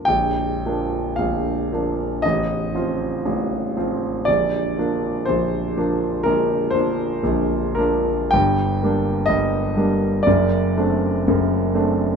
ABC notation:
X:1
M:4/4
L:1/8
Q:1/4=59
K:Bb
V:1 name="Grand piano"
g2 f2 e4 | d2 c2 B c2 B | g2 e2 d4 |]
V:2 name="Grand piano" clef=bass
[B,,,,B,,,] [F,B,D] [B,,,,B,,,] [F,B,D] [A,,,,A,,,] [F,CF] [A,,,,A,,,] [F,CF] | [B,,,,B,,,] [F,B,D] [B,,,,B,,,] [F,B,D] [B,,,,B,,,] [F,B,D] [B,,,,B,,,] [F,B,D] | [G,,,G,,] [G,B,D] [G,,,G,,] [G,B,D] [^F,,,^F,,] [A,CD] [F,,,F,,] [A,CD] |]